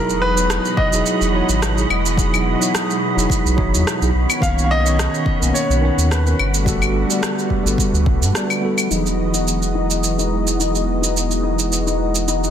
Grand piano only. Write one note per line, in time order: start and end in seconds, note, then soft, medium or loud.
0.00 0.20 A#4 medium
0.22 0.80 B4 loud
0.77 1.86 D#5 loud
4.42 4.47 F5 loud
4.64 4.71 F5 medium
4.71 5.57 D#5 loud
5.54 6.12 C#5 medium
6.11 6.51 B4 medium